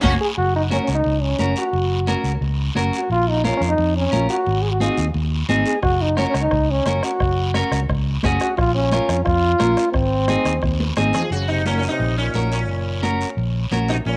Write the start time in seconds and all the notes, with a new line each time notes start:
0.01 F#1 A#3 C#4 F#4, bombo low, high conga, long guiro
0.20 G#4
0.37 F#1 F#4, high conga, long guiro
0.56 D#4
0.70 C#4 F#4 A#4, high conga, short guiro
0.84 C#4, short guiro
0.88 C#2
0.95 D#4
1.04 C#2, high conga, long guiro
1.23 C#4
1.38 F#1 C#4 F#4 A#4, high conga, short guiro
1.56 F#4, short guiro
1.73 F#1, high conga, long guiro
2.07 C#4 F#4 A#4, high conga, short guiro
2.24 C#2, short guiro
2.41 C#2, high conga, long guiro
2.75 F#1 C#4 F#4 A#4, high conga, short guiro
2.93 F#4, short guiro
3.10 A#1 F4, high conga, long guiro
3.29 D#4
3.44 C#4 F4 A#4, high conga, short guiro
3.57 F2 C#4
3.62 short guiro
3.69 D#4
3.78 F2, high conga, long guiro
3.97 C#4
4.11 A#1 C#4 F4 A#4, high conga, short guiro
4.29 F#4, short guiro
4.46 G#1, high conga, long guiro
4.62 G#4
4.71 F#4
4.80 C4 D#4 F4 G#4, high conga, short guiro
4.90 F#4
4.98 D#2, short guiro
5.15 D#2, high conga, long guiro
5.49 G#1 C4 D#4 G#4, high conga, short guiro
5.66 G#4, short guiro
5.83 F#1 F#4, bombo low, bombo rim, high conga, long guiro
6.02 D#4
6.17 C#4 F#4 A#4, bombo rim, high conga, short guiro
6.30 C#4
6.34 C#2, bombo rim, short guiro
6.42 D#4
6.51 C#2, bombo low, bombo rim, high conga, long guiro
6.71 C#4
6.86 F#1 C#4 F#4 A#4, bombo rim, high conga, short guiro
7.03 F#4, bombo rim, short guiro
7.20 F#1, bombo low, bombo rim, high conga, long guiro
7.54 C#4 F#4 A#4, bombo rim, high conga, short guiro
7.71 C#2, bombo rim, short guiro
7.89 C#2, bombo low, bombo rim, high conga, long guiro
8.23 F#1 C#4 F#4 G#4, bombo low, bombo rim, high conga, short guiro
8.40 F#4, bombo rim, short guiro
8.57 A#1 F4, bombo low, bombo rim, high conga, long guiro
8.75 C#4
8.92 C#4 F4 A#4, bombo rim, high conga, short guiro
9.09 F2, bombo rim, short guiro
9.25 F2 F4, bombo low, bombo rim, high conga, long guiro
9.59 A#1 C#4 F4 A#4, bombo rim, high conga, short guiro
9.77 bombo rim, short guiro
9.92 G#1 C4, bombo low, bombo rim, high conga, long guiro
10.28 C4 D#4 G#4, bombo rim, high conga, short guiro
10.45 D#2, bombo rim, short guiro
10.62 D#2, bombo low, bombo rim, high conga, long guiro
10.80 high conga
10.96 G#1 C4 D#4 G#4, bombo rim, high conga, short guiro
11.13 F3 G#4, bombo rim, low conga, short guiro
11.30 F#1 C#3 F#4, high conga, long guiro
11.48 C3 D#4
11.66 A#2 C#4 F#4 A#4, high conga, short guiro
11.77 A#2 C#4
11.83 short guiro
11.88 C3 D#4
12.00 A#1, high conga, long guiro
12.18 A#2 C#4
12.34 A#1 C#4 F#4 A#4, high conga, short guiro
12.52 A#2 C#4, short guiro
12.68 F#1, high conga, long guiro
13.02 C#4 F#4 A#4, high conga, short guiro
13.21 short guiro
13.37 A#1, high conga, long guiro
13.71 A#1 C#4 F#4 A#4, high conga, short guiro
13.88 C3 D#4, short guiro
14.05 A#1 A#2 C#4, high conga, long guiro